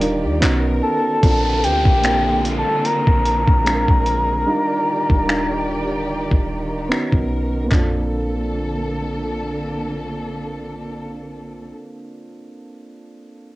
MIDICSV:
0, 0, Header, 1, 7, 480
1, 0, Start_track
1, 0, Key_signature, -2, "major"
1, 0, Tempo, 810811
1, 728, Time_signature, 4, 2, 24, 8
1, 8026, End_track
2, 0, Start_track
2, 0, Title_t, "Soft synth lead"
2, 0, Program_c, 0, 80
2, 0, Note_on_c, 0, 74, 90
2, 227, Note_off_c, 0, 74, 0
2, 490, Note_on_c, 0, 81, 109
2, 970, Note_on_c, 0, 79, 104
2, 979, Note_off_c, 0, 81, 0
2, 1449, Note_off_c, 0, 79, 0
2, 1530, Note_on_c, 0, 81, 100
2, 1689, Note_on_c, 0, 82, 98
2, 1698, Note_off_c, 0, 81, 0
2, 4089, Note_off_c, 0, 82, 0
2, 8026, End_track
3, 0, Start_track
3, 0, Title_t, "Synth keys"
3, 0, Program_c, 1, 88
3, 0, Control_c, 1, 64, 127
3, 0, Note_on_c, 1, 55, 82
3, 0, Note_on_c, 1, 62, 88
3, 0, Note_on_c, 1, 63, 88
3, 0, Note_on_c, 1, 65, 84
3, 0, Note_on_c, 1, 70, 105
3, 5, Note_off_c, 1, 62, 0
3, 5, Note_on_c, 1, 62, 80
3, 11, Note_off_c, 1, 63, 0
3, 11, Note_on_c, 1, 63, 75
3, 17, Note_off_c, 1, 65, 0
3, 17, Note_on_c, 1, 65, 79
3, 22, Note_off_c, 1, 70, 0
3, 22, Note_on_c, 1, 70, 93
3, 241, Note_on_c, 1, 59, 96
3, 244, Note_off_c, 1, 55, 0
3, 245, Note_off_c, 1, 63, 0
3, 246, Note_off_c, 1, 62, 0
3, 247, Note_on_c, 1, 61, 85
3, 252, Note_off_c, 1, 65, 0
3, 252, Note_on_c, 1, 63, 83
3, 255, Note_off_c, 1, 70, 0
3, 255, Control_c, 1, 64, 0
3, 258, Note_on_c, 1, 66, 86
3, 264, Note_on_c, 1, 70, 104
3, 349, Control_c, 1, 64, 127
3, 657, Note_off_c, 1, 59, 0
3, 659, Note_off_c, 1, 61, 0
3, 662, Note_off_c, 1, 63, 0
3, 665, Note_off_c, 1, 66, 0
3, 668, Note_off_c, 1, 70, 0
3, 720, Note_on_c, 1, 69, 75
3, 725, Note_on_c, 1, 60, 68
3, 732, Note_on_c, 1, 62, 65
3, 737, Control_c, 1, 64, 0
3, 738, Note_on_c, 1, 65, 67
3, 743, Note_on_c, 1, 70, 84
3, 835, Control_c, 1, 64, 127
3, 1136, Note_off_c, 1, 69, 0
3, 1139, Note_off_c, 1, 60, 0
3, 1142, Note_off_c, 1, 62, 0
3, 1145, Note_off_c, 1, 65, 0
3, 1147, Note_off_c, 1, 70, 0
3, 1199, Note_on_c, 1, 58, 73
3, 1206, Note_on_c, 1, 60, 65
3, 1210, Note_on_c, 1, 62, 63
3, 1216, Note_on_c, 1, 65, 66
3, 1222, Note_on_c, 1, 70, 83
3, 2023, Note_off_c, 1, 58, 0
3, 2026, Note_off_c, 1, 60, 0
3, 2029, Note_off_c, 1, 62, 0
3, 2032, Note_off_c, 1, 65, 0
3, 2035, Note_off_c, 1, 70, 0
3, 2158, Note_on_c, 1, 56, 70
3, 2163, Note_on_c, 1, 60, 65
3, 2169, Note_on_c, 1, 62, 62
3, 2175, Note_on_c, 1, 65, 67
3, 2177, Control_c, 1, 64, 0
3, 2180, Note_on_c, 1, 68, 65
3, 2216, Note_off_c, 1, 68, 0
3, 2219, Note_on_c, 1, 70, 78
3, 2285, Control_c, 1, 64, 127
3, 2575, Note_off_c, 1, 56, 0
3, 2578, Note_off_c, 1, 60, 0
3, 2581, Note_off_c, 1, 62, 0
3, 2584, Note_off_c, 1, 65, 0
3, 2606, Note_off_c, 1, 70, 0
3, 2638, Note_on_c, 1, 55, 83
3, 2645, Note_on_c, 1, 62, 80
3, 2650, Note_on_c, 1, 63, 79
3, 2656, Control_c, 1, 64, 0
3, 2656, Note_on_c, 1, 65, 77
3, 2661, Note_on_c, 1, 70, 95
3, 2748, Control_c, 1, 64, 127
3, 3055, Note_off_c, 1, 55, 0
3, 3058, Note_off_c, 1, 62, 0
3, 3061, Note_off_c, 1, 63, 0
3, 3064, Note_off_c, 1, 65, 0
3, 3067, Note_off_c, 1, 70, 0
3, 3119, Note_on_c, 1, 55, 82
3, 3125, Note_on_c, 1, 62, 75
3, 3129, Note_on_c, 1, 63, 74
3, 3136, Note_on_c, 1, 65, 73
3, 3141, Note_on_c, 1, 70, 97
3, 3943, Note_off_c, 1, 55, 0
3, 3946, Note_off_c, 1, 62, 0
3, 3948, Note_off_c, 1, 63, 0
3, 3952, Note_off_c, 1, 65, 0
3, 3954, Note_off_c, 1, 70, 0
3, 4079, Note_on_c, 1, 59, 84
3, 4084, Note_on_c, 1, 61, 78
3, 4091, Note_on_c, 1, 63, 76
3, 4095, Control_c, 1, 64, 0
3, 4095, Note_on_c, 1, 66, 73
3, 4101, Note_on_c, 1, 70, 90
3, 4200, Control_c, 1, 64, 127
3, 4495, Note_off_c, 1, 59, 0
3, 4498, Note_off_c, 1, 61, 0
3, 4501, Note_off_c, 1, 63, 0
3, 4504, Note_off_c, 1, 66, 0
3, 4506, Note_off_c, 1, 70, 0
3, 4525, Note_on_c, 1, 58, 78
3, 4546, Note_on_c, 1, 60, 68
3, 4570, Note_on_c, 1, 62, 68
3, 4576, Control_c, 1, 64, 0
3, 4592, Note_on_c, 1, 65, 68
3, 4614, Note_on_c, 1, 69, 83
3, 4681, Control_c, 1, 64, 127
3, 7137, Note_off_c, 1, 58, 0
3, 7159, Note_off_c, 1, 60, 0
3, 7183, Note_off_c, 1, 62, 0
3, 7205, Note_off_c, 1, 65, 0
3, 7227, Note_off_c, 1, 69, 0
3, 7976, Control_c, 1, 64, 0
3, 8026, End_track
4, 0, Start_track
4, 0, Title_t, "String section"
4, 0, Program_c, 2, 48
4, 0, Note_on_c, 2, 51, 79
4, 0, Note_on_c, 2, 67, 94
4, 0, Note_on_c, 2, 74, 73
4, 233, Note_off_c, 2, 67, 0
4, 233, Note_off_c, 2, 74, 0
4, 245, Note_on_c, 2, 70, 82
4, 246, Note_on_c, 2, 59, 71
4, 708, Note_off_c, 2, 51, 0
4, 722, Note_off_c, 2, 59, 0
4, 722, Note_off_c, 2, 70, 0
4, 726, Note_on_c, 2, 50, 77
4, 726, Note_on_c, 2, 58, 70
4, 726, Note_on_c, 2, 65, 81
4, 2152, Note_off_c, 2, 65, 0
4, 2153, Note_off_c, 2, 58, 0
4, 2169, Note_on_c, 2, 58, 61
4, 2170, Note_on_c, 2, 68, 71
4, 2628, Note_off_c, 2, 50, 0
4, 2644, Note_off_c, 2, 58, 0
4, 2644, Note_off_c, 2, 68, 0
4, 2648, Note_on_c, 2, 67, 79
4, 2649, Note_on_c, 2, 51, 77
4, 2649, Note_on_c, 2, 74, 67
4, 4074, Note_off_c, 2, 67, 0
4, 4074, Note_off_c, 2, 74, 0
4, 4087, Note_on_c, 2, 70, 72
4, 4088, Note_on_c, 2, 59, 62
4, 4550, Note_off_c, 2, 51, 0
4, 4563, Note_off_c, 2, 59, 0
4, 4563, Note_off_c, 2, 70, 0
4, 4568, Note_on_c, 2, 69, 79
4, 4569, Note_on_c, 2, 50, 68
4, 4570, Note_on_c, 2, 58, 65
4, 6938, Note_off_c, 2, 69, 0
4, 6939, Note_off_c, 2, 50, 0
4, 6939, Note_off_c, 2, 58, 0
4, 8026, End_track
5, 0, Start_track
5, 0, Title_t, "808-style bass"
5, 0, Program_c, 3, 38
5, 0, Note_on_c, 3, 27, 108
5, 141, Note_on_c, 3, 39, 102
5, 150, Note_off_c, 3, 27, 0
5, 244, Note_off_c, 3, 39, 0
5, 250, Note_on_c, 3, 35, 112
5, 480, Note_off_c, 3, 35, 0
5, 730, Note_on_c, 3, 34, 103
5, 973, Note_on_c, 3, 38, 96
5, 982, Note_off_c, 3, 34, 0
5, 1094, Note_off_c, 3, 38, 0
5, 1100, Note_on_c, 3, 34, 94
5, 1560, Note_off_c, 3, 34, 0
5, 1819, Note_on_c, 3, 34, 96
5, 2049, Note_off_c, 3, 34, 0
5, 2059, Note_on_c, 3, 34, 97
5, 2289, Note_off_c, 3, 34, 0
5, 2300, Note_on_c, 3, 34, 94
5, 2635, Note_off_c, 3, 34, 0
5, 3020, Note_on_c, 3, 27, 103
5, 3715, Note_off_c, 3, 27, 0
5, 3740, Note_on_c, 3, 27, 99
5, 3982, Note_on_c, 3, 26, 96
5, 3990, Note_off_c, 3, 27, 0
5, 4085, Note_off_c, 3, 26, 0
5, 4219, Note_on_c, 3, 35, 93
5, 4555, Note_off_c, 3, 35, 0
5, 4570, Note_on_c, 3, 34, 99
5, 6939, Note_off_c, 3, 34, 0
5, 8026, End_track
6, 0, Start_track
6, 0, Title_t, "Downlifter"
6, 0, Program_c, 4, 103
6, 728, Note_on_c, 4, 60, 85
6, 4568, Note_off_c, 4, 60, 0
6, 8026, End_track
7, 0, Start_track
7, 0, Title_t, "Drums"
7, 8, Note_on_c, 9, 42, 71
7, 68, Note_off_c, 9, 42, 0
7, 249, Note_on_c, 9, 42, 68
7, 255, Note_on_c, 9, 39, 123
7, 309, Note_off_c, 9, 42, 0
7, 315, Note_off_c, 9, 39, 0
7, 728, Note_on_c, 9, 36, 107
7, 728, Note_on_c, 9, 42, 71
7, 787, Note_off_c, 9, 36, 0
7, 787, Note_off_c, 9, 42, 0
7, 971, Note_on_c, 9, 42, 70
7, 1030, Note_off_c, 9, 42, 0
7, 1098, Note_on_c, 9, 36, 93
7, 1157, Note_off_c, 9, 36, 0
7, 1205, Note_on_c, 9, 42, 71
7, 1212, Note_on_c, 9, 26, 104
7, 1264, Note_off_c, 9, 42, 0
7, 1271, Note_off_c, 9, 26, 0
7, 1451, Note_on_c, 9, 42, 66
7, 1510, Note_off_c, 9, 42, 0
7, 1687, Note_on_c, 9, 42, 73
7, 1746, Note_off_c, 9, 42, 0
7, 1818, Note_on_c, 9, 36, 89
7, 1877, Note_off_c, 9, 36, 0
7, 1927, Note_on_c, 9, 42, 68
7, 1986, Note_off_c, 9, 42, 0
7, 2057, Note_on_c, 9, 36, 89
7, 2117, Note_off_c, 9, 36, 0
7, 2168, Note_on_c, 9, 42, 63
7, 2174, Note_on_c, 9, 26, 111
7, 2228, Note_off_c, 9, 42, 0
7, 2234, Note_off_c, 9, 26, 0
7, 2298, Note_on_c, 9, 36, 90
7, 2357, Note_off_c, 9, 36, 0
7, 2403, Note_on_c, 9, 42, 61
7, 2462, Note_off_c, 9, 42, 0
7, 3018, Note_on_c, 9, 36, 92
7, 3077, Note_off_c, 9, 36, 0
7, 3133, Note_on_c, 9, 26, 111
7, 3192, Note_off_c, 9, 26, 0
7, 3738, Note_on_c, 9, 36, 93
7, 3798, Note_off_c, 9, 36, 0
7, 4095, Note_on_c, 9, 26, 110
7, 4154, Note_off_c, 9, 26, 0
7, 4218, Note_on_c, 9, 36, 93
7, 4277, Note_off_c, 9, 36, 0
7, 4568, Note_on_c, 9, 36, 93
7, 4568, Note_on_c, 9, 39, 80
7, 4568, Note_on_c, 9, 43, 93
7, 4627, Note_off_c, 9, 36, 0
7, 4628, Note_off_c, 9, 39, 0
7, 4628, Note_off_c, 9, 43, 0
7, 8026, End_track
0, 0, End_of_file